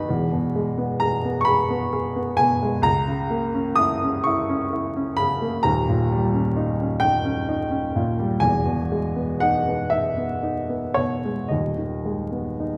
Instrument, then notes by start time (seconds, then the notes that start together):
grand piano
Already playing: D#4 B4 B5
0.09 E1 E2
0.32 B2
0.56 G#3
0.78 B3
1.00 G#4 A#5
1.25 B3
1.41 C#6
1.45 G#4 B5
1.70 B3
1.93 G#4
2.16 B3
2.37 B2 G#5
2.63 G#3
2.82 C#2 A#5
3.08 C#3
3.30 A#3
3.54 C#4
3.75 E4 D#6
4.03 C#4
4.24 E4 C#6
4.49 C#4
4.73 E4
4.96 C#4
5.17 C#3 B5
5.42 A#3
5.63 D#1 D#2 A#5
5.89 A#2
6.12 G3
6.34 C#4
6.56 D#4
6.81 C#4
7.00 D#4 G5
7.25 C#4
7.49 D#4
7.70 C#4
7.96 A#2
8.19 G3
8.40 E1 E2 G#5
8.65 B2
8.92 G#3
9.16 B3
9.40 D#4 F#5
9.68 B3
9.90 D#4 E5
10.17 B3
10.43 D#4
10.69 B3
10.94 B2 C#5
11.25 G#3
11.48 D#1 D#2 D#5
11.78 D#3
12.06 G#3
12.32 B3
12.60 D#4